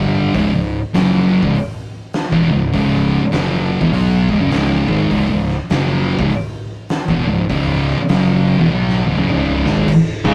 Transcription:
0.00 0.32 G1 medium
0.00 0.34 G2 medium
0.00 0.34 D3 medium
0.00 0.35 G3 medium
0.34 0.52 C#1 medium
0.34 0.52 C#2 medium
0.34 0.53 G#2 loud
0.34 kick loud
0.34 open hi-hat medium
0.53 0.81 C#1 medium
0.53 0.79 C#2 medium
0.53 0.79 G#2 medium
0.94 1.40 F#1 medium
0.94 1.42 F#2 medium
0.94 1.42 C#3 medium
0.94 1.43 F#3 loud
0.94 snare loud
0.94 open hi-hat medium
1.43 1.54 C#1 loud
1.43 1.54 C#2 medium
1.43 1.54 G#2 medium
1.43 kick loud
1.55 open hi-hat medium
2.13 snare loud
2.13 open hi-hat soft
2.32 2.49 E1 medium
2.32 2.49 E2 medium
2.32 2.50 B2 medium
2.32 kick loud
2.51 2.72 C#1 medium
2.51 2.69 C#2 medium
2.51 2.69 G#2 medium
2.73 3.18 C#1 loud
2.73 3.19 C#2 loud
2.73 3.21 G#2 loud
2.73 3.21 C#3 loud
2.73 kick loud
2.73 open hi-hat medium
3.21 muted distorted electric guitar stroke medium
3.21 muted fingered electric bass stroke soft
3.32 3.78 F#1 medium
3.32 3.80 F#2 loud
3.32 3.80 C#3 loud
3.32 3.80 F#3 loud
3.32 snare loud
3.32 open hi-hat medium
3.81 3.92 E1 loud
3.81 3.91 E2 medium
3.81 3.91 B2 medium
3.81 kick loud
3.92 4.27 B1 medium
3.92 4.28 B2 loud
3.92 4.28 F#3 loud
3.92 4.28 B3 loud
3.92 open hi-hat medium
4.29 4.39 C#1 medium
4.29 4.40 C#2 loud
4.29 4.40 G#2 loud
4.29 kick loud
4.40 4.51 F#1 medium
4.40 4.51 F#2 medium
4.40 4.52 C#3 loud
4.51 4.86 C#1 medium
4.51 4.87 C#2 loud
4.51 4.87 G#2 medium
4.51 4.88 C#3 loud
4.51 snare loud
4.51 open hi-hat medium
4.88 5.10 G#1 loud
4.88 5.11 G#2 medium
4.88 5.11 D#3 medium
4.88 5.11 G#3 loud
4.88 kick loud
5.11 5.28 C#1 loud
5.11 5.28 C#2 loud
5.11 5.29 G#2 loud
5.11 kick medium
5.11 open hi-hat medium
5.29 5.58 C#1 medium
5.29 5.55 C#2 medium
5.29 5.55 G#2 medium
5.48 snare soft
5.70 6.16 F#1 medium
5.70 6.19 F#2 loud
5.70 6.19 C#3 loud
5.70 6.19 F#3 loud
5.70 snare loud
5.70 open hi-hat medium
6.19 6.30 C#1 loud
6.19 6.30 C#2 medium
6.19 6.31 G#2 loud
6.19 kick loud
6.30 open hi-hat medium
6.89 snare loud
6.89 open hi-hat medium
7.08 7.26 E1 medium
7.08 7.26 E2 medium
7.08 7.27 B2 medium
7.08 kick loud
7.27 7.49 C#1 medium
7.27 7.45 C#2 medium
7.27 7.46 G#2 medium
7.49 7.94 C#1 loud
7.49 7.97 C#2 loud
7.49 7.97 G#2 loud
7.49 7.98 C#3 loud
7.49 kick loud
7.49 open hi-hat medium
7.87 snare soft
7.98 muted fingered electric bass stroke soft
7.98 muted distorted electric guitar stroke medium
8.09 8.54 F#1 loud
8.09 8.57 F#2 loud
8.09 8.57 C#3 loud
8.09 8.58 F#3 loud
8.09 snare loud
8.09 open hi-hat medium
8.58 8.68 E1 loud
8.58 8.69 E2 medium
8.58 8.69 B2 medium
8.69 9.03 B1 loud
8.69 9.05 B2 loud
8.69 9.06 F#3 loud
8.69 9.06 B3 loud
8.69 high tom medium
8.89 snare medium
9.06 9.16 C#1 medium
9.06 9.17 C#2 medium
9.06 9.18 G#2 loud
9.17 9.28 F#1 medium
9.17 9.28 F#2 medium
9.17 9.29 C#3 medium
9.17 kick medium
9.29 9.62 C#1 medium
9.29 9.65 C#2 medium
9.29 9.65 G#2 medium
9.29 9.66 C#3 loud
9.29 mid tom medium
9.65 9.86 G#1 loud
9.65 9.87 G#2 medium
9.65 9.88 D#3 medium
9.65 9.88 G#3 loud
9.65 snare medium
9.77 kick medium
9.88 kick loud
9.88 crash loud
10.25 10.34 C#1 medium
10.25 10.34 C#2 loud
10.25 10.34 G#2 loud
10.25 10.34 C#3 loud
10.25 kick loud

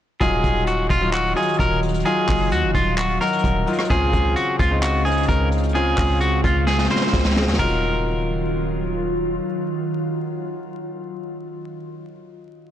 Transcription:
0.20 0.43 D#1 loud
0.20 3.87 D#3 medium
0.20 0.74 F#3 loud
0.20 3.87 F#3 medium
0.20 0.75 D#4 medium
0.20 0.75 F4 loud
0.20 0.64 G#4 loud
0.20 7.55 F5 medium
0.20 kick loud
0.20 closed hi-hat medium
0.44 0.88 D#1 loud
0.44 kick medium
0.44 closed hi-hat medium
0.67 0.87 F#4 medium
0.67 closed hi-hat medium
0.90 1.35 D#1 loud
0.90 1.10 F4 medium
0.90 kick loud
0.90 closed hi-hat medium
1.01 1.24 F#3 medium
1.01 1.25 D#4 medium
1.01 1.25 F4 medium
1.13 1.33 F#4 medium
1.13 clap loud
1.13 closed hi-hat medium
1.36 1.82 F#3 medium
1.36 1.82 D#4 medium
1.36 1.83 F4 medium
1.36 1.56 G#4 medium
1.36 closed hi-hat medium
1.42 closed hi-hat medium
1.48 closed hi-hat medium
1.54 closed hi-hat medium
1.59 2.04 D#1 loud
1.59 1.79 A#4 medium
1.59 kick loud
1.59 closed hi-hat medium
1.83 closed hi-hat medium
1.88 closed hi-hat medium
1.94 closed hi-hat medium
2.00 closed hi-hat medium
2.05 2.67 F#3 loud
2.05 2.67 D#4 medium
2.05 2.67 F4 loud
2.05 2.49 G#4 loud
2.05 closed hi-hat medium
2.29 2.53 F#1 loud
2.29 kick medium
2.29 clap medium
2.29 open hi-hat medium
2.52 2.65 D#2 loud
2.52 2.72 F#4 medium
2.52 closed hi-hat medium
2.63 2.74 F#1 loud
2.75 3.19 D#1 loud
2.75 2.94 F4 medium
2.75 kick loud
2.75 closed hi-hat medium
2.98 3.18 F#4 medium
2.98 clap loud
2.98 closed hi-hat medium
3.20 3.51 F#3 medium
3.20 3.52 D#4 medium
3.20 3.52 F#4 medium
3.20 3.86 A#4 medium
3.20 cross-stick medium
3.20 closed hi-hat medium
3.27 closed hi-hat medium
3.33 closed hi-hat medium
3.38 closed hi-hat medium
3.44 3.66 D#1 loud
3.44 kick loud
3.44 closed hi-hat medium
3.67 3.82 F#3 medium
3.67 3.82 D#4 medium
3.67 3.83 F4 medium
3.67 closed hi-hat medium
3.73 closed hi-hat medium
3.79 cross-stick loud
3.79 closed hi-hat medium
3.84 closed hi-hat medium
3.90 4.12 C#2 loud
3.90 4.44 C#3 medium
3.90 7.56 C#3 medium
3.90 4.44 C4 medium
3.90 7.56 C4 medium
3.90 4.44 F4 loud
3.90 4.34 G#4 loud
3.90 kick loud
4.13 4.35 C#2 loud
4.13 kick medium
4.13 closed hi-hat medium
4.36 4.56 F#4 medium
4.36 closed hi-hat medium
4.59 5.26 C#2 loud
4.59 4.79 F4 medium
4.59 kick loud
4.59 closed hi-hat medium
4.70 4.94 C#3 medium
4.70 4.94 C4 medium
4.70 4.94 D#4 medium
4.82 5.02 F#4 medium
4.82 clap loud
4.82 closed hi-hat medium
5.05 5.51 C#3 medium
5.05 5.52 C4 medium
5.05 5.52 D#4 medium
5.05 5.25 G#4 medium
5.05 closed hi-hat medium
5.11 closed hi-hat medium
5.17 closed hi-hat medium
5.23 closed hi-hat medium
5.28 5.95 C#2 loud
5.28 5.48 A#4 medium
5.28 kick loud
5.28 closed hi-hat medium
5.52 closed hi-hat medium
5.58 closed hi-hat medium
5.63 closed hi-hat medium
5.69 closed hi-hat medium
5.74 6.36 C#3 loud
5.74 6.36 C4 medium
5.74 6.36 F4 loud
5.74 6.18 G#4 loud
5.74 closed hi-hat medium
5.98 6.42 C#2 loud
5.98 kick medium
5.98 clap medium
5.98 open hi-hat medium
6.21 6.41 F#4 medium
6.21 closed hi-hat medium
6.44 6.88 C#2 loud
6.44 6.64 F4 medium
6.44 kick loud
6.44 closed hi-hat medium
6.67 6.87 G#4 medium
6.67 snare medium
6.73 snare medium
6.79 snare medium
6.84 snare medium
6.90 7.21 C#3 medium
6.90 7.21 C4 medium
6.90 7.21 F4 medium
6.90 7.56 C5 medium
6.90 snare medium
6.96 snare medium
7.02 snare medium
7.07 snare medium
7.13 7.49 C#2 loud
7.13 kick loud
7.13 snare medium
7.19 snare medium
7.25 snare loud
7.31 snare medium
7.36 7.51 C#3 medium
7.36 7.52 C4 medium
7.36 7.52 G#4 loud
7.36 snare loud
7.42 snare medium
7.48 7.59 D#2 loud
7.48 snare loud
7.54 11.60 F#3 medium
7.54 snare loud
7.59 9.40 D#1 loud
7.59 11.62 D#3 medium
7.59 11.62 F#3 medium
7.59 11.62 D#4 medium
7.59 11.62 F4 medium
7.59 11.64 F4 medium
7.59 8.94 A#4 medium
7.59 kick loud
7.59 floor tom loud
7.59 crash medium

